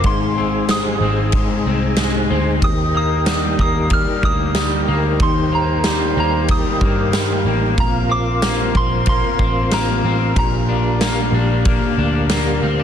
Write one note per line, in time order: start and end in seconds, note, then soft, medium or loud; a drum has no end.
0.00 0.11 A#3 medium
0.00 0.38 C4 medium
0.00 2.59 C5 medium
0.00 ride medium
0.04 0.97 G#1 loud
0.04 2.62 G#2 medium
0.04 7.75 D#4 medium
0.04 2.60 G#4 medium
0.04 2.60 G#5 medium
0.04 0.66 C6 medium
0.04 kick medium
0.38 1.01 C4 medium
0.69 1.33 G#3 medium
0.69 2.27 D#6 medium
0.69 snare loud
0.69 ride soft
0.69 tambourine medium
1.01 1.47 G#1 medium
1.01 1.66 C4 medium
1.32 1.98 G#3 medium
1.32 2.83 D#5 medium
1.32 kick loud
1.32 ride medium
1.65 2.27 C2 medium
1.65 2.29 C4 medium
1.96 2.69 G#3 medium
1.96 snare loud
1.96 ride medium
1.96 tambourine medium
2.30 2.61 D2 medium
2.30 2.69 C4 medium
2.62 3.55 D#2 loud
2.62 7.75 G4 medium
2.62 7.75 A#4 medium
2.62 7.75 G5 medium
2.62 2.96 D#6 medium
2.62 kick loud
2.62 ride medium
2.94 3.59 A#3 medium
2.94 3.60 D#6 loud
3.26 3.90 G3 medium
3.26 snare loud
3.26 ride medium
3.26 tambourine medium
3.59 4.05 D#2 loud
3.59 4.24 A#3 medium
3.59 3.93 D#6 loud
3.59 kick medium
3.90 4.54 G3 medium
3.90 4.22 F6 loud
3.90 kick loud
3.90 ride medium
4.23 4.85 D2 medium
4.23 4.88 A#3 medium
4.23 5.24 D#6 loud
4.23 kick medium
4.55 5.84 G3 medium
4.55 6.06 C5 medium
4.55 snare loud
4.55 ride medium
4.55 tambourine medium
4.88 5.19 D2 medium
4.88 5.52 A#3 medium
5.20 6.13 D#2 loud
5.20 7.78 D#3 medium
5.20 5.54 C6 medium
5.20 kick loud
5.20 ride medium
5.52 6.17 A#3 medium
5.52 6.19 A#5 medium
5.84 6.48 G3 medium
5.84 snare loud
5.84 ride medium
5.84 tambourine medium
6.16 6.63 D#2 medium
6.16 6.81 A#3 medium
6.16 7.67 F5 medium
6.16 6.52 A#5 medium
6.48 7.12 G3 medium
6.48 7.43 D#6 medium
6.48 kick medium
6.48 ride medium
6.81 7.43 G2 medium
6.81 7.45 A#3 medium
6.81 kick medium
7.13 7.84 G3 medium
7.13 snare loud
7.13 ride medium
7.13 tambourine medium
7.45 7.76 A1 medium
7.45 8.12 A#3 medium
7.78 8.71 A#1 loud
7.78 10.34 C4 medium
7.78 10.34 F4 medium
7.78 12.83 A#4 medium
7.78 12.83 F5 medium
7.78 8.12 A#5 medium
7.78 kick loud
7.78 ride medium
8.09 8.73 C4 medium
8.09 8.77 D6 loud
8.42 9.07 A#3 medium
8.42 snare loud
8.42 ride medium
8.42 tambourine medium
8.75 9.21 A#1 loud
8.75 9.38 C4 medium
8.75 9.08 C6 loud
8.75 kick medium
9.06 9.71 A#3 medium
9.06 9.75 C6 loud
9.06 kick medium
9.06 ride medium
9.39 10.01 A1 medium
9.39 10.04 C4 medium
9.39 kick medium
9.71 11.01 A#3 medium
9.71 10.37 A#5 medium
9.71 snare loud
9.71 ride medium
9.71 tambourine medium
10.04 10.34 A1 loud
10.04 10.43 C4 medium
10.35 11.29 A#1 loud
10.35 12.83 A#2 medium
10.35 12.83 D4 medium
10.35 12.83 G4 medium
10.35 12.27 A#5 medium
10.35 kick loud
10.35 ride medium
10.69 11.33 D4 medium
11.01 11.65 A#3 medium
11.01 snare loud
11.01 ride medium
11.01 tambourine medium
11.32 11.79 A#1 loud
11.32 11.97 D4 medium
11.65 12.30 A#3 medium
11.65 kick loud
11.65 ride medium
11.98 12.59 D2 medium
11.98 12.62 D4 medium
11.98 12.83 D5 medium
12.29 12.83 A#3 medium
12.29 snare loud
12.29 ride medium
12.29 tambourine medium
12.62 12.83 D2 medium
12.62 12.79 C4 medium
12.79 12.83 D4 medium